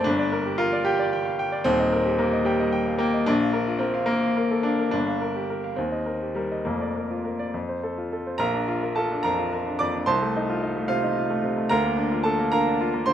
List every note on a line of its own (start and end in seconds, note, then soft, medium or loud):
0.04 1.62 G1 loud
0.04 0.58 D4 loud
0.19 0.40 D5 medium
0.32 0.54 A#4 medium
0.46 0.67 G4 medium
0.58 0.85 F4 loud
0.58 0.81 A#4 medium
0.73 0.94 D5 medium
0.85 1.65 G4 loud
0.85 1.07 G5 medium
0.99 1.21 D5 medium
1.13 1.34 G5 medium
1.25 1.39 F5 medium
1.39 1.61 G5 medium
1.52 1.66 D5 medium
1.64 3.23 D#1 medium
1.64 3.23 D#2 loud
1.64 2.19 C4 loud
1.79 2.01 D#5 medium
1.93 2.14 A#4 medium
2.06 2.28 G4 medium
2.18 2.46 A#3 medium
2.18 2.41 A#4 medium
2.33 2.55 D#5 medium
2.45 3.00 G3 medium
2.45 2.68 G5 medium
2.60 2.82 D#5 medium
2.72 2.95 G5 medium
2.86 3.00 F5 medium
2.98 3.27 A#3 loud
2.98 3.22 G5 medium
3.14 3.27 D#5 medium
3.26 4.88 A#1 medium
3.26 3.81 D4 loud
3.40 3.62 F5 medium
3.53 3.76 A#4 medium
3.68 3.89 F4 medium
3.79 4.07 C4 medium
3.79 4.03 A#4 medium
3.94 4.16 F5 medium
4.06 4.63 A#3 medium
4.06 4.30 A#4 medium
4.23 4.45 F5 medium
4.37 4.59 A#4 medium
4.51 4.65 A4 medium
4.63 4.90 D4 medium
4.63 4.87 F5 medium
4.79 4.93 A#4 medium
4.91 5.75 G1 medium
4.91 5.76 D4 loud
5.07 5.29 F5 medium
5.21 5.43 A#4 medium
5.36 5.58 G4 medium
5.50 5.72 A#4 medium
5.64 5.78 F5 medium
5.76 6.63 D#2 medium
5.76 6.34 C4 medium
5.92 6.15 D#5 medium
6.06 6.29 A#4 medium
6.22 6.45 G4 soft
6.35 6.65 G3 medium
6.35 6.59 A#4 medium
6.52 6.66 D#5 soft
6.65 7.52 F1 medium
6.65 7.52 F2 medium
6.65 7.54 A#3 medium
6.81 7.04 D5 soft
6.96 7.19 A#4 medium
7.11 7.34 F4 soft
7.25 7.48 A#4 medium
7.39 7.54 D5 medium
7.54 8.38 F2 medium
7.69 7.92 C5 medium
7.83 8.06 A4 medium
7.98 8.21 F4 soft
8.12 8.35 A4 medium
8.27 8.40 C5 soft
8.38 10.03 A#1 medium
8.38 8.81 A#4 medium
8.38 8.93 F5 medium
8.38 8.96 A#5 loud
8.54 8.77 D4 medium
8.68 8.91 F4 medium
8.83 9.05 A#4 medium
8.96 9.20 F4 medium
8.96 9.23 A4 medium
8.96 9.24 A5 medium
9.12 9.34 D4 medium
9.23 9.47 F2 medium
9.23 9.51 A#4 medium
9.23 9.76 F5 medium
9.23 9.79 A#5 loud
9.39 9.61 F4 medium
9.53 9.75 A#4 medium
9.67 9.89 D4 medium
9.79 10.02 F2 medium
9.79 10.06 D5 medium
9.79 10.07 D6 loud
9.94 10.08 D4 medium
10.06 11.66 C2 medium
10.06 10.86 C5 medium
10.06 10.86 A5 medium
10.06 10.89 C6 loud
10.22 10.44 A3 medium
10.36 10.58 D#4 medium
10.49 10.71 F4 medium
10.63 10.85 D#4 medium
10.76 10.98 A3 medium
10.88 11.11 C3 medium
10.88 11.16 F4 medium
10.88 11.65 C5 medium
10.88 11.69 F5 loud
11.03 11.25 D#4 medium
11.17 11.38 F4 medium
11.30 11.51 A3 medium
11.44 11.65 C3 medium
11.57 11.70 A3 medium
11.69 13.13 D2 medium
11.69 12.21 A#4 medium
11.69 12.21 F5 medium
11.69 12.24 A#5 loud
11.84 12.05 A#3 medium
11.97 12.19 D4 medium
12.12 12.33 F4 medium
12.23 12.46 D4 medium
12.23 12.50 A4 medium
12.23 12.51 A5 medium
12.39 12.60 A#3 medium
12.52 12.74 D3 medium
12.52 13.02 A#4 medium
12.52 13.02 F5 medium
12.52 13.06 A#5 loud
12.66 12.87 D4 medium
12.81 13.01 F4 medium
12.93 13.13 A#3 medium
13.06 13.13 D3 medium
13.06 13.13 C5 medium
13.06 13.13 C6 loud